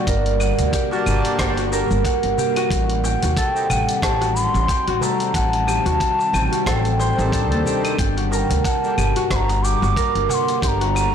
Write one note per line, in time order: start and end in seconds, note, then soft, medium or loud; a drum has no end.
0.00 2.68 D3 medium
0.00 11.15 G3 medium
0.00 2.68 A#3 medium
0.00 0.79 F#4 medium
0.00 1.06 D5 loud
0.07 0.51 G1 loud
0.07 1.72 A#4 medium
0.07 kick loud
0.07 closed hi-hat medium
0.07 shaker soft
0.26 closed hi-hat soft
0.40 0.79 F#5 medium
0.40 darbuka ka medium
0.40 darbuka tek medium
0.40 claves medium
0.40 shaker medium
0.59 0.69 D2 medium
0.59 closed hi-hat soft
0.59 darbuka dum medium
0.59 shaker soft
0.73 0.98 G4 medium
0.73 kick loud
0.73 closed hi-hat medium
0.73 shaker soft
0.90 1.69 G3 medium
0.90 1.68 A#3 medium
0.90 1.68 D4 medium
0.90 1.46 F#4 loud
0.90 1.70 A5 loud
0.90 darbuka tek medium
0.90 shaker soft
1.06 1.20 G1 medium
1.06 darbuka dum medium
1.06 claves medium
1.06 shaker medium
1.25 closed hi-hat soft
1.25 shaker soft
1.38 1.82 G1 medium
1.38 1.64 G5 medium
1.38 kick loud
1.38 cross-stick medium
1.38 closed hi-hat medium
1.38 darbuka tek medium
1.38 shaker medium
1.57 2.45 F#4 medium
1.57 closed hi-hat soft
1.57 shaker soft
1.71 1.87 A#3 medium
1.71 1.88 D4 medium
1.71 1.88 G4 medium
1.71 1.88 A4 medium
1.71 3.43 A#4 medium
1.71 darbuka tek medium
1.71 shaker medium
1.91 2.01 G1 medium
1.91 shaker soft
2.05 2.45 F#5 medium
2.05 kick loud
2.05 closed hi-hat medium
2.05 shaker soft
2.23 2.34 G1 medium
2.23 closed hi-hat soft
2.38 2.63 G4 medium
2.38 darbuka dum loud
2.38 shaker medium
2.56 3.10 F#4 loud
2.56 closed hi-hat soft
2.56 darbuka ka medium
2.56 claves medium
2.56 shaker soft
2.71 3.14 A1 medium
2.71 7.94 D#3 medium
2.71 7.94 C4 medium
2.71 kick loud
2.71 closed hi-hat medium
2.71 shaker soft
2.90 closed hi-hat soft
3.04 3.37 F#5 medium
3.04 3.28 G5 medium
3.04 darbuka ka medium
3.04 darbuka tek medium
3.04 shaker medium
3.22 3.33 D#2 medium
3.22 4.10 F#4 medium
3.22 closed hi-hat soft
3.22 darbuka dum medium
3.22 shaker soft
3.37 5.57 A4 medium
3.37 3.48 F#5 loud
3.37 kick loud
3.37 closed hi-hat medium
3.37 shaker soft
3.48 4.02 G5 loud
3.54 3.67 C4 medium
3.54 3.68 D#4 medium
3.54 3.68 G4 medium
3.54 3.68 A4 medium
3.54 shaker soft
3.70 3.83 A1 loud
3.70 4.10 F#5 medium
3.70 darbuka dum loud
3.70 claves medium
3.70 shaker medium
3.89 closed hi-hat soft
3.89 shaker soft
4.02 4.46 A1 medium
4.02 4.27 G4 medium
4.02 4.37 A5 loud
4.02 kick loud
4.02 cross-stick medium
4.02 closed hi-hat medium
4.02 shaker soft
4.21 4.75 F#4 loud
4.21 closed hi-hat soft
4.21 darbuka tek medium
4.21 shaker soft
4.35 4.95 C6 loud
4.35 darbuka ka medium
4.35 shaker medium
4.54 4.65 A1 loud
4.54 shaker soft
4.68 4.93 G5 medium
4.68 kick loud
4.68 closed hi-hat medium
4.68 shaker soft
4.87 4.98 A1 medium
4.87 5.74 F#4 medium
4.87 closed hi-hat soft
4.95 5.03 C6 medium
5.01 8.38 A3 medium
5.01 5.36 A#5 loud
5.01 darbuka ka medium
5.01 darbuka tek medium
5.01 darbuka dum loud
5.01 shaker medium
5.20 closed hi-hat soft
5.20 shaker soft
5.34 5.78 A1 medium
5.34 5.74 F#5 medium
5.34 6.66 A5 loud
5.34 kick loud
5.34 closed hi-hat medium
5.34 shaker soft
5.53 closed hi-hat soft
5.67 5.92 G4 medium
5.67 darbuka ka medium
5.67 darbuka tek medium
5.67 claves medium
5.67 shaker medium
5.85 5.97 D#2 medium
5.85 6.39 F#4 loud
5.85 closed hi-hat soft
5.85 darbuka dum loud
5.85 shaker soft
6.00 kick loud
6.00 closed hi-hat medium
6.00 shaker soft
6.19 darbuka tek medium
6.19 shaker soft
6.33 6.47 A1 medium
6.33 6.58 G5 medium
6.33 darbuka dum loud
6.33 claves medium
6.33 shaker medium
6.52 7.72 F#4 medium
6.52 closed hi-hat soft
6.52 shaker soft
6.66 7.10 A1 loud
6.66 7.51 A4 medium
6.66 7.62 G5 loud
6.66 kick loud
6.66 cross-stick medium
6.66 closed hi-hat medium
6.66 darbuka tek medium
6.66 shaker soft
6.85 closed hi-hat soft
6.85 shaker soft
6.99 8.98 C5 loud
6.99 darbuka tek medium
6.99 shaker medium
7.16 7.52 A1 loud
7.16 7.96 D#3 medium
7.16 7.97 G3 medium
7.16 7.96 C4 medium
7.16 shaker soft
7.20 7.98 A4 medium
7.32 10.12 D4 medium
7.32 kick loud
7.32 closed hi-hat medium
7.32 shaker soft
7.51 7.62 D#2 loud
7.51 8.38 A4 medium
7.51 closed hi-hat soft
7.66 8.23 G4 medium
7.66 darbuka dum medium
7.66 shaker medium
7.84 closed hi-hat soft
7.84 darbuka ka medium
7.84 claves medium
7.84 shaker soft
7.99 8.42 G1 medium
7.99 11.15 D3 medium
7.99 11.15 A#3 medium
7.99 8.23 G5 medium
7.99 kick loud
7.99 closed hi-hat medium
7.99 shaker soft
8.17 9.04 F#4 medium
8.17 closed hi-hat soft
8.31 9.96 A#4 medium
8.31 8.39 A5 medium
8.31 darbuka ka medium
8.31 darbuka tek medium
8.31 shaker medium
8.38 8.67 G5 medium
8.50 8.61 D2 medium
8.50 closed hi-hat soft
8.50 darbuka dum medium
8.50 shaker soft
8.65 9.04 F#5 medium
8.65 8.70 A#5 medium
8.65 kick loud
8.65 closed hi-hat medium
8.65 shaker soft
8.69 9.31 A5 loud
8.83 8.95 A#3 medium
8.83 8.96 D4 medium
8.83 8.96 G4 medium
8.83 8.96 A4 medium
8.83 shaker soft
8.98 9.11 G1 medium
8.98 9.22 G4 medium
8.98 darbuka dum medium
8.98 claves medium
8.98 shaker medium
9.16 9.70 F#4 loud
9.16 closed hi-hat soft
9.16 shaker soft
9.30 9.74 G1 loud
9.30 9.37 C6 loud
9.30 kick loud
9.30 cross-stick medium
9.30 closed hi-hat medium
9.30 shaker soft
9.36 9.65 A#5 loud
9.49 closed hi-hat soft
9.49 darbuka tek medium
9.49 shaker soft
9.63 9.88 G5 medium
9.63 10.30 D6 loud
9.63 darbuka ka medium
9.63 shaker medium
9.82 9.93 G1 loud
9.82 10.68 F#4 medium
9.82 shaker soft
9.96 11.15 A#4 medium
9.96 kick loud
9.96 closed hi-hat medium
9.96 shaker soft
10.15 10.26 G1 medium
10.15 closed hi-hat soft
10.29 10.68 F#5 medium
10.29 10.35 D6 loud
10.29 darbuka ka medium
10.29 darbuka tek medium
10.29 darbuka dum medium
10.29 shaker medium
10.34 10.62 C6 loud
10.48 closed hi-hat soft
10.48 shaker soft
10.62 11.06 G1 medium
10.62 10.87 G4 medium
10.62 10.69 C6 loud
10.62 kick loud
10.62 closed hi-hat medium
10.62 shaker soft
10.68 11.15 A#5 loud
10.81 11.15 F#4 loud
10.81 closed hi-hat soft
10.95 darbuka ka medium
10.95 darbuka tek medium
10.95 claves medium
10.95 shaker medium